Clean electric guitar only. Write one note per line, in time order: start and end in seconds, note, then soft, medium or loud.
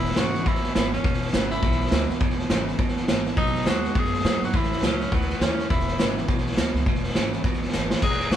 0.00 0.16 E2 medium
0.00 0.17 B2 loud
0.17 0.44 E2 medium
0.17 0.45 C#3 loud
0.46 0.74 E2 medium
0.46 0.74 B2 medium
0.75 1.02 E2 medium
0.75 1.02 B2 loud
1.05 1.34 B2 loud
1.34 1.61 E2 medium
1.34 1.61 C#3 loud
1.63 1.90 E2 medium
1.63 1.91 B2 loud
1.91 2.19 E2 medium
1.91 2.19 B2 loud
2.20 2.48 E2 medium
2.20 2.50 B2 medium
2.50 2.77 E2 medium
2.50 2.77 C#3 medium
2.78 3.08 E2 medium
2.78 3.08 B2 medium
3.09 3.35 E2 medium
3.09 3.36 B2 medium
3.38 3.66 B2 medium
3.38 3.67 F#3 loud
3.67 3.94 B2 medium
3.67 3.94 G#3 loud
3.96 4.24 B2 medium
3.96 4.24 F#3 loud
4.25 4.52 B2 medium
4.25 4.52 F#3 medium
4.54 4.82 A2 medium
4.54 4.84 E3 medium
4.83 5.10 A2 medium
4.83 5.10 F#3 medium
5.12 5.40 A2 medium
5.12 5.40 E3 medium
5.41 5.68 A2 medium
5.41 5.68 E3 medium
5.71 5.99 E2 medium
5.71 6.00 B2 medium
6.00 6.27 E2 medium
6.00 6.27 C#3 loud
6.29 6.57 E2 medium
6.29 6.57 B2 medium
6.58 6.84 E2 medium
6.58 6.85 B2 medium
6.88 7.14 E2 medium
6.88 7.15 B2 medium
7.16 7.42 E2 medium
7.16 7.43 C#3 loud
7.45 7.73 E2 medium
7.45 7.73 B2 loud
7.74 8.01 E2 medium
7.74 8.01 B2 loud